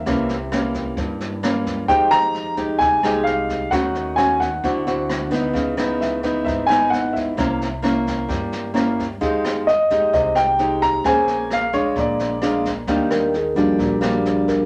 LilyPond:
<<
  \new Staff \with { instrumentName = "Grand piano" } { \time 4/4 \key f \minor \tempo 4 = 131 fes''4. r2 r8 | g''8 bes''4 r8 aes''4 f''4 | ges''4 aes''8 ges''2 r8 | r4 fes''4 fes''8 aes''8 ges''8 fes''8~ |
fes''4. r2 r8 | r4 ees''4 ees''8 g''4 bes''8 | aes''4 f''8 des''8 d''4. r8 | \key ees \major r1 | }
  \new Staff \with { instrumentName = "Tine electric piano" } { \time 4/4 \key f \minor r1 | r1 | r1 | r1 |
r1 | r1 | r1 | \key ees \major r8 bes'8 aes'8 <f g d' ges'>8 g'4. bes'8 | }
  \new Staff \with { instrumentName = "Nylon-string guitar" } { \time 4/4 \key f \minor << { <e bes des'>8 r8 <e bes des'>2 <e bes des'>4 | <aes ees' g'>4. <aes ees' g'>4 <aes ees' g'>4. | <a des' ges'>4 <a des' ges'>8 r8 <c' e' fis'>8 <c' e' fis'>4 <e ces' ees'>8~ | <e ces' ees'>8 <fes ces' ees'>4 <fes ces' ees'>4 <fes ces' ees'>4. |
<bes des' e'>8 r8 <bes des' e'>2 <bes des' e'>8 r8 | <aes ees' g'>4 r8 <aes ees' g'>4. <aes ees' g'>4 | <des' aes' c''>4. <aes d' f'>4. <aes d' f'>8 r8 | \key ees \major <g bes d'>4 r8 <g bes d'>4 <g bes d'>4. | } \\ { c2 g,2 | f2 c2 | ees2 d2 | des2 aes,2 |
c2 g2 | f2 c2 | bes2 bes,2 | ees2 bes,2 | } >> }
  \new Staff \with { instrumentName = "Upright bass" } { \clef bass \time 4/4 \key f \minor c,2 g,2 | f,2 c,2 | ees,2 d,2 | des,2 aes,,2 |
c,2 g,2 | f,2 c,2 | bes,,2 bes,,2 | \key ees \major ees,2 bes,,2 | }
  \new DrumStaff \with { instrumentName = "Drums" } \drummode { \time 4/4 <bd ss sn>8 sn8 <ss sn>8 <bd sn>8 <bd sn>8 sn8 <ss sn>8 <bd sn>8 | <bd sn>8 <ss sn>8 sn8 <bd sn>8 <bd sn>8 <ss sn>8 sn8 <bd sn>8 | <bd ss sn>8 sn8 <ss sn>8 <bd sn>8 <bd sn>8 sn8 <ss sn>8 <bd sn>8 | <bd sn>8 <ss sn>8 sn8 <bd sn>8 <bd sn>8 <ss sn>8 sn8 <bd sn>8 |
<bd ss sn>8 sn8 <ss sn>8 <bd sn>8 <bd sn>8 sn8 <ss sn>8 <bd sn>8 | <bd sn>8 <ss sn>8 sn8 <bd sn>8 <bd sn>8 <ss sn>8 sn8 <bd sn>8 | <bd ss sn>8 sn8 <ss sn>8 <bd sn>8 <bd sn>8 sn8 <ss sn>8 <bd sn>8 | <bd sn>8 <ss sn>8 sn8 <bd sn>8 <bd sn>8 <ss sn>8 sn8 <bd sn>8 | }
>>